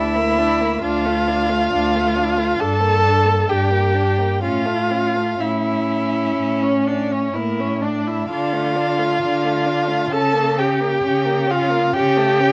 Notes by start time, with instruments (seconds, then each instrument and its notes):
Already playing: cello D2, violin D4 E5, viola E4
0.16 violin A#3
0.39 violin D4
0.61 violin A#3
0.82 cello D2, violin D4 F5, viola F4
1.06 violin A3
1.28 violin D4
1.49 violin A3
1.72 cello D2, violin D4
1.95 violin A3
2.16 violin D4
2.38 violin A3
2.59 cello G2, violin D4 A5, viola A4
2.81 violin A#3
3.03 violin D4
3.25 violin A#3
3.47 cello G2, violin D4 G5, viola G4
3.71 violin A#3
3.95 violin D4
4.19 violin A#3
4.42 cello A2, violin C#4 F5, viola F4
4.66 violin A3
4.91 violin C#4
5.15 violin A3
5.39 cello A2, violin C#4 E5, viola E4
6.37 cello A2
6.63 viola C#4, violin C#5
6.87 viola D4, violin D5
7.12 viola C#4, violin C#5
7.33 cello A2, viola A#3, violin E4 A#4
7.60 viola C#4, violin C#5
7.81 violin D4 D5, viola D4
8.07 viola E4, violin E5
8.29 cello D3, violin D4 F5, viola F4
8.53 violin A3
8.76 violin D4
8.99 violin A3
9.22 cello D3, violin D4
9.44 violin A3
9.66 violin D4
9.89 violin A3
10.12 cello C#3, violin C#4 A5, viola A4
10.34 violin A#3
10.57 violin C#4 G5, viola G4
10.81 violin A#3
11.03 cello C#3, violin C#4
11.26 violin A#3
11.47 violin C#4 F5, viola F4
11.70 violin A#3
11.94 cello C#3, violin C#4 G5, viola G4
12.17 violin A3
12.40 violin C#4